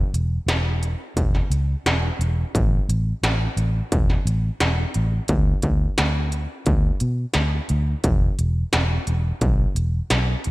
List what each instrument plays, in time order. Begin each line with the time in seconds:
0.14 fingered electric bass E1, closed hi-hat
0.46 fingered electric bass E1, snare, closed hi-hat
0.83 closed hi-hat
1.16 fingered electric bass E1, kick, closed hi-hat
1.35 snare
1.50 fingered electric bass C#2, closed hi-hat
1.86 fingered electric bass E1, snare, closed hi-hat
2.19 fingered electric bass E1, closed hi-hat
2.55 fingered electric bass A1, kick, closed hi-hat
2.89 fingered electric bass A1, closed hi-hat
3.23 fingered electric bass A1, snare, closed hi-hat
3.57 fingered electric bass A1, closed hi-hat
3.92 fingered electric bass E1, kick, closed hi-hat
4.10 snare
4.25 fingered electric bass A1, closed hi-hat
4.60 fingered electric bass E1, snare, closed hi-hat
4.94 fingered electric bass A1, closed hi-hat
5.28 fingered electric bass D2, kick, closed hi-hat
5.62 fingered electric bass D2, kick, closed hi-hat
5.98 fingered electric bass D2, snare, closed hi-hat
6.32 closed hi-hat
6.66 fingered electric bass D2, kick, closed hi-hat
7.00 fingered electric bass B2, closed hi-hat
7.34 fingered electric bass D2, snare, closed hi-hat
7.69 fingered electric bass D2, closed hi-hat
8.04 fingered electric bass E1, kick, closed hi-hat
8.39 fingered electric bass E1, closed hi-hat
8.73 fingered electric bass E1, snare, closed hi-hat
9.07 fingered electric bass E1, closed hi-hat
9.41 fingered electric bass B1, kick, closed hi-hat
9.75 fingered electric bass E1, closed hi-hat
10.10 fingered electric bass B1, snare, closed hi-hat
10.44 fingered electric bass E1, closed hi-hat